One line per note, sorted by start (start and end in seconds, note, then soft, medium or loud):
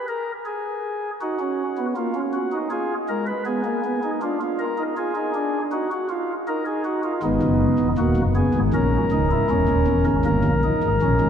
0.08 0.32 A#4 medium
0.46 1.11 G#4 medium
1.21 1.37 D#4 medium
1.21 1.86 F#4 medium
1.39 1.63 C#4 medium
1.78 1.94 B3 medium
1.96 2.12 A#3 medium
1.96 2.19 F4 medium
2.15 2.38 C#4 medium
2.33 2.56 F#4 medium
2.52 2.68 D#4 medium
2.71 2.94 F4 medium
2.71 2.94 G#4 medium
3.09 3.32 G#3 medium
3.09 3.25 A#4 medium
3.27 3.43 B4 medium
3.46 3.62 B3 medium
3.46 4.11 G#4 medium
3.65 3.81 A#3 medium
3.85 4.00 B3 medium
4.03 4.19 D#4 medium
4.22 4.38 D4 medium
4.22 4.39 F4 medium
4.41 4.64 F4 medium
4.59 4.82 A#4 medium
4.78 4.94 D#4 medium
4.97 5.13 F4 medium
4.97 5.62 G#4 medium
5.15 5.32 D#4 medium
5.35 5.58 D4 medium
5.72 5.88 D#4 medium
5.72 5.90 F#4 medium
5.92 6.07 F#4 medium
6.09 6.33 F4 medium
6.47 7.12 D#4 medium
6.47 6.64 A#4 medium
6.66 6.82 G#4 medium
6.85 7.01 F#4 medium
7.04 7.20 F4 medium
7.23 7.39 G#1 medium
7.23 7.39 G#2 loud
7.23 7.88 B3 medium
7.23 7.88 D#4 medium
7.42 7.65 F#1 medium
7.42 7.66 F#2 medium
7.79 7.96 E1 medium
7.79 7.96 E2 medium
7.98 8.15 D#1 medium
7.98 8.14 D#2 medium
7.98 8.22 A#3 medium
7.98 8.22 F#4 medium
8.16 8.40 F#1 medium
8.16 8.40 F#2 medium
8.35 8.59 B3 medium
8.35 8.59 G#4 medium
8.54 8.71 G#1 medium
8.54 8.71 G#2 medium
8.74 8.97 A#1 medium
8.74 8.97 A#2 medium
8.74 8.98 C#4 medium
8.74 10.04 A#4 medium
9.11 9.35 C#1 medium
9.11 9.35 C#2 medium
9.11 9.28 D#4 medium
9.31 9.47 E4 medium
9.50 9.66 E1 medium
9.50 9.66 E2 medium
9.50 10.15 C#4 medium
9.68 9.85 D#1 medium
9.68 9.85 D#2 medium
9.87 10.04 E1 medium
9.87 10.04 E2 medium
10.06 10.23 G#1 medium
10.06 10.23 G#2 medium
10.25 10.42 G1 medium
10.25 10.42 G2 medium
10.25 10.49 A#3 medium
10.25 11.29 A#4 medium
10.45 10.68 A#1 medium
10.45 10.68 A#2 medium
10.64 10.87 D#4 medium
10.84 11.00 G#1 medium
10.84 11.00 G#2 medium
11.02 11.18 A#1 medium
11.02 11.18 A#2 medium
11.02 11.29 C#4 medium
11.21 11.29 G#1 medium
11.21 11.29 G#2 medium